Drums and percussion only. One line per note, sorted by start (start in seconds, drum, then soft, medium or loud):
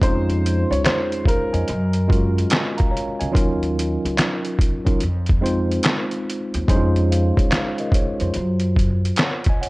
0.02 kick loud
0.02 closed hi-hat medium
0.30 closed hi-hat soft
0.46 closed hi-hat medium
0.73 closed hi-hat soft
0.85 snare medium
0.85 clap medium
0.85 closed hi-hat medium
1.12 closed hi-hat soft
1.25 kick medium
1.25 closed hi-hat medium
1.54 closed hi-hat soft
1.68 closed hi-hat medium
1.93 closed hi-hat soft
2.10 kick medium
2.10 closed hi-hat soft
2.38 closed hi-hat medium
2.50 snare loud
2.50 clap medium
2.50 closed hi-hat medium
2.78 kick medium
2.78 closed hi-hat soft
2.97 closed hi-hat medium
3.21 closed hi-hat medium
3.35 kick loud
3.35 closed hi-hat medium
3.63 closed hi-hat soft
3.79 closed hi-hat medium
4.06 closed hi-hat medium
4.18 snare medium
4.18 clap medium
4.18 closed hi-hat medium
4.45 closed hi-hat soft
4.59 kick medium
4.59 closed hi-hat medium
4.87 kick medium
4.87 closed hi-hat soft
5.00 closed hi-hat medium
5.26 kick medium
5.26 closed hi-hat soft
5.46 closed hi-hat medium
5.72 closed hi-hat soft
5.83 snare loud
5.83 clap medium
5.83 closed hi-hat medium
6.11 closed hi-hat soft
6.30 closed hi-hat medium
6.54 closed hi-hat soft
6.68 kick loud
6.68 closed hi-hat medium
6.96 closed hi-hat soft
7.12 closed hi-hat medium
7.37 kick medium
7.37 closed hi-hat soft
7.51 snare medium
7.51 clap medium
7.51 closed hi-hat medium
7.78 closed hi-hat soft
7.92 kick medium
7.92 closed hi-hat medium
8.20 closed hi-hat soft
8.34 closed hi-hat medium
8.60 closed hi-hat soft
8.76 kick medium
8.76 closed hi-hat medium
9.05 closed hi-hat soft
9.16 snare loud
9.16 clap medium
9.16 closed hi-hat medium
9.44 kick medium
9.44 closed hi-hat soft
9.63 closed hi-hat medium